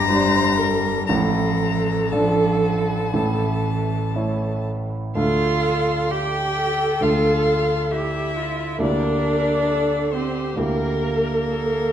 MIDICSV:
0, 0, Header, 1, 5, 480
1, 0, Start_track
1, 0, Key_signature, -1, "minor"
1, 0, Tempo, 983607
1, 527, Time_signature, 4, 2, 24, 8
1, 527, Tempo, 1022147
1, 2447, Tempo, 927357
1, 3407, Tempo, 888889
1, 5327, Tempo, 918836
1, 6030, End_track
2, 0, Start_track
2, 0, Title_t, "Violin"
2, 0, Program_c, 0, 40
2, 0, Note_on_c, 0, 82, 127
2, 518, Note_off_c, 0, 82, 0
2, 521, Note_on_c, 0, 82, 90
2, 1011, Note_on_c, 0, 81, 76
2, 1019, Note_off_c, 0, 82, 0
2, 2207, Note_off_c, 0, 81, 0
2, 2443, Note_on_c, 0, 77, 89
2, 2936, Note_on_c, 0, 79, 94
2, 2944, Note_off_c, 0, 77, 0
2, 3405, Note_on_c, 0, 77, 87
2, 3413, Note_off_c, 0, 79, 0
2, 3887, Note_on_c, 0, 76, 81
2, 3895, Note_off_c, 0, 77, 0
2, 4368, Note_off_c, 0, 76, 0
2, 4377, Note_on_c, 0, 74, 84
2, 5084, Note_on_c, 0, 72, 75
2, 5092, Note_off_c, 0, 74, 0
2, 5328, Note_on_c, 0, 70, 87
2, 5336, Note_off_c, 0, 72, 0
2, 6030, Note_off_c, 0, 70, 0
2, 6030, End_track
3, 0, Start_track
3, 0, Title_t, "Viola"
3, 0, Program_c, 1, 41
3, 41, Note_on_c, 1, 72, 82
3, 281, Note_on_c, 1, 70, 66
3, 288, Note_off_c, 1, 72, 0
3, 525, Note_on_c, 1, 69, 81
3, 532, Note_off_c, 1, 70, 0
3, 2207, Note_off_c, 1, 69, 0
3, 2449, Note_on_c, 1, 69, 81
3, 2935, Note_on_c, 1, 67, 63
3, 2943, Note_off_c, 1, 69, 0
3, 3174, Note_on_c, 1, 69, 78
3, 3181, Note_off_c, 1, 67, 0
3, 3891, Note_on_c, 1, 67, 61
3, 3899, Note_off_c, 1, 69, 0
3, 4132, Note_on_c, 1, 65, 57
3, 4141, Note_off_c, 1, 67, 0
3, 4366, Note_off_c, 1, 65, 0
3, 4369, Note_on_c, 1, 70, 70
3, 4854, Note_on_c, 1, 69, 61
3, 4862, Note_off_c, 1, 70, 0
3, 5092, Note_on_c, 1, 67, 64
3, 5100, Note_off_c, 1, 69, 0
3, 5333, Note_on_c, 1, 70, 80
3, 5341, Note_off_c, 1, 67, 0
3, 5801, Note_off_c, 1, 70, 0
3, 5808, Note_on_c, 1, 69, 66
3, 6030, Note_off_c, 1, 69, 0
3, 6030, End_track
4, 0, Start_track
4, 0, Title_t, "Cello"
4, 0, Program_c, 2, 42
4, 0, Note_on_c, 2, 55, 79
4, 525, Note_off_c, 2, 55, 0
4, 529, Note_on_c, 2, 53, 72
4, 1004, Note_off_c, 2, 53, 0
4, 1025, Note_on_c, 2, 53, 67
4, 1495, Note_on_c, 2, 52, 54
4, 1502, Note_off_c, 2, 53, 0
4, 2349, Note_off_c, 2, 52, 0
4, 2447, Note_on_c, 2, 65, 85
4, 2932, Note_on_c, 2, 67, 80
4, 2940, Note_off_c, 2, 65, 0
4, 3413, Note_on_c, 2, 65, 68
4, 3421, Note_off_c, 2, 67, 0
4, 3891, Note_on_c, 2, 64, 69
4, 3899, Note_off_c, 2, 65, 0
4, 4367, Note_on_c, 2, 62, 77
4, 4375, Note_off_c, 2, 64, 0
4, 5087, Note_off_c, 2, 62, 0
4, 5090, Note_on_c, 2, 60, 62
4, 5323, Note_off_c, 2, 60, 0
4, 5331, Note_on_c, 2, 58, 64
4, 6030, Note_off_c, 2, 58, 0
4, 6030, End_track
5, 0, Start_track
5, 0, Title_t, "Grand piano"
5, 0, Program_c, 3, 0
5, 0, Control_c, 3, 64, 127
5, 0, Note_on_c, 3, 31, 79
5, 0, Note_on_c, 3, 43, 86
5, 49, Note_on_c, 3, 55, 58
5, 51, Note_on_c, 3, 62, 58
5, 55, Note_on_c, 3, 74, 66
5, 509, Note_off_c, 3, 43, 0
5, 509, Note_off_c, 3, 55, 0
5, 510, Note_off_c, 3, 31, 0
5, 510, Note_off_c, 3, 62, 0
5, 512, Note_off_c, 3, 74, 0
5, 533, Note_on_c, 3, 33, 69
5, 533, Note_on_c, 3, 45, 70
5, 537, Control_c, 3, 64, 0
5, 633, Control_c, 3, 64, 127
5, 1016, Note_on_c, 3, 53, 45
5, 1017, Note_on_c, 3, 62, 51
5, 1019, Note_on_c, 3, 74, 50
5, 1472, Note_off_c, 3, 53, 0
5, 1473, Note_off_c, 3, 62, 0
5, 1474, Note_off_c, 3, 33, 0
5, 1474, Note_off_c, 3, 45, 0
5, 1474, Note_off_c, 3, 74, 0
5, 1494, Note_on_c, 3, 33, 53
5, 1494, Note_on_c, 3, 45, 68
5, 1498, Control_c, 3, 64, 0
5, 1588, Control_c, 3, 64, 127
5, 1971, Note_on_c, 3, 57, 46
5, 1973, Note_on_c, 3, 64, 50
5, 1974, Note_on_c, 3, 73, 52
5, 2429, Note_off_c, 3, 45, 0
5, 2430, Note_off_c, 3, 33, 0
5, 2431, Note_off_c, 3, 57, 0
5, 2432, Note_off_c, 3, 64, 0
5, 2432, Note_off_c, 3, 73, 0
5, 2441, Note_on_c, 3, 38, 57
5, 2444, Note_on_c, 3, 57, 51
5, 2444, Note_on_c, 3, 62, 45
5, 2449, Note_on_c, 3, 69, 47
5, 2455, Control_c, 3, 64, 0
5, 2562, Control_c, 3, 64, 127
5, 3383, Note_off_c, 3, 38, 0
5, 3385, Note_off_c, 3, 57, 0
5, 3385, Note_off_c, 3, 62, 0
5, 3388, Note_off_c, 3, 69, 0
5, 3400, Note_on_c, 3, 38, 57
5, 3402, Note_on_c, 3, 57, 43
5, 3403, Note_on_c, 3, 62, 42
5, 3407, Note_on_c, 3, 69, 43
5, 4344, Note_off_c, 3, 38, 0
5, 4345, Note_off_c, 3, 57, 0
5, 4345, Note_off_c, 3, 62, 0
5, 4347, Note_off_c, 3, 69, 0
5, 4362, Note_on_c, 3, 38, 56
5, 4365, Note_on_c, 3, 58, 45
5, 4367, Note_on_c, 3, 64, 46
5, 4370, Note_on_c, 3, 67, 46
5, 4377, Control_c, 3, 64, 0
5, 4456, Control_c, 3, 64, 127
5, 5301, Note_off_c, 3, 38, 0
5, 5303, Note_off_c, 3, 58, 0
5, 5304, Note_off_c, 3, 64, 0
5, 5305, Note_off_c, 3, 67, 0
5, 5320, Note_on_c, 3, 38, 54
5, 5323, Note_on_c, 3, 58, 48
5, 5326, Note_on_c, 3, 64, 42
5, 5330, Note_on_c, 3, 67, 47
5, 6030, Note_off_c, 3, 38, 0
5, 6030, Note_off_c, 3, 58, 0
5, 6030, Note_off_c, 3, 64, 0
5, 6030, Note_off_c, 3, 67, 0
5, 6030, End_track
0, 0, End_of_file